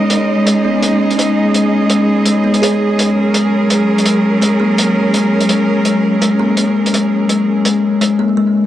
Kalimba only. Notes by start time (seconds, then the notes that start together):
0.10 G#3
0.46 G#3
0.65 B3
0.82 A#3
1.18 G#3
1.54 G#3
1.90 G#3
2.26 G#3
2.44 B3
2.62 G#4
2.98 G#3
3.34 G#3
3.70 G#3
4.06 G#3
4.42 G#3
4.60 A#3
4.78 A#3
5.14 G#3
5.50 G#3
5.86 G#3
6.22 G#3
6.40 A#3
6.57 A#3
6.93 G#3
7.29 G#3
7.65 G#3
8.01 G#3
8.19 A#3
8.37 G#3